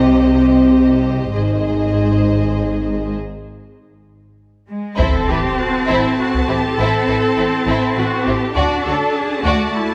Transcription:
Already playing: double bass section C2, cello section C3, french horn section C4, viola section G4, violin section C5 D#5
1.34 double bass section G#1, cello section G#2, french horn section D#4, viola section G#4, violin section C5 D#5
4.69 cello section G#3
4.98 double bass section A1, cello section C4, violin section E4 C5 A5, french horn section E4 A4, viola section A4, taiko, impact
5.29 double bass section A1, violin section E4 B4, viola section G4
5.58 viola section F#4
5.88 double bass section A1, violin section E4 C5, viola section E4
6.18 viola section F#4
6.34 taiko
6.48 double bass section A1, violin section E4 C5, viola section G4
6.77 double bass section A1, cello section C4, violin section E4 C5, viola section A4
7.08 double bass section A1, violin section E4 B4
7.37 double bass section A1, violin section E4 C5
7.66 double bass section A1, viola section E4, violin section E4 C5
7.96 double bass section A1, violin section E4 B4, viola section F#4
8.26 double bass section A1, violin section E4 C5, viola section G4
8.56 double bass section D2, cello section D4, violin section F#4 D5 A5, viola section F#4, french horn section F#4 A4
8.85 double bass section D2, violin section F#4 C#5, viola section A4
9.16 viola section G#4
9.43 double bass section D2, cello section A3, viola section F#4, violin section F#4 D5
9.75 viola section E4

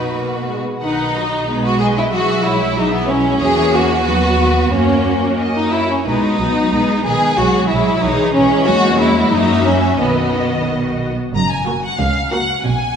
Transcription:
Already playing: double bass section B1, cello section B2, violin section F#4 B4
0.14 viola section A#3
0.49 viola section G#3
0.81 double bass section B1, viola section D#3 B4, violin section D#4 F#5
1.15 viola section F#3 F#4, violin section D#5
1.48 cello section G#3, viola section B3 G#4, violin section B4
1.65 violin section F#4
1.79 viola section G#3 B4, violin section G#4 D#5
1.98 violin section E4
2.11 viola section E3 G#4, cello section F#3, violin section F#4 E5
2.43 viola section G#3 E4, violin section E4 C#5
2.76 viola section E3 G#4, violin section D#4 E5
2.93 violin section B3
3.07 viola section G#3 E4, violin section C#4 C#5
3.38 double bass section E2, cello section E3, viola section A#3 F#4, violin section G#4 C#5
3.74 violin section F#4
4.04 double bass section D#2, cello section F#3, viola section B3 F#4, violin section B4
4.37 cello section B3
4.71 double bass section F#2, cello section A#3, viola section A#3 F#4, violin section C#4 C#5
5.38 violin section D#5
5.57 violin section D#4
5.73 violin section E4 C#5
5.91 violin section C#4
6.05 double bass section B1, cello section G#3, viola section B3 F#4, violin section D#4 B4
6.39 double bass section B1, cello section F#3, viola section B3 F#4, violin section B4
6.71 double bass section B1, cello section G#3, viola section B3 G#4, violin section B4
7.04 double bass section B1, cello section D#3, viola section B3 G#4, violin section G#4 B4
7.37 double bass section B1, cello section F#3, viola section G#3 G#4, violin section F#4 C#5
7.68 double bass section B1, viola section G#3 G#4, violin section E4 C#5
8.02 double bass section B1, cello section E3, viola section G#3 G#4, violin section D#4 C#5
8.34 double bass section B1, viola section G#3 G#4, violin section C#4 C#5
8.65 double bass section E2, cello section G#3, viola section A#3 F#4, violin section F#4 C#5
9.00 violin section E4
9.33 double bass section F#2, cello section F#3, viola section A#3 F#4, violin section D#4 E5
9.66 violin section C#4
9.99 double bass section B1, cello section D#3, violin section B3 D#5, viola section B3 F#4
11.34 double bass section F#1, cello section F#2, violin section A#5
11.51 violin section G#5
11.67 viola section A#3 F#4, violin section F#4 A#4
11.85 violin section F#5
11.99 double bass section C#2, cello section C#2, violin section F5
12.32 viola section A#3 F#4, violin section F#4 A#4 F#5
12.64 double bass section B1, cello section B2, violin section G#5

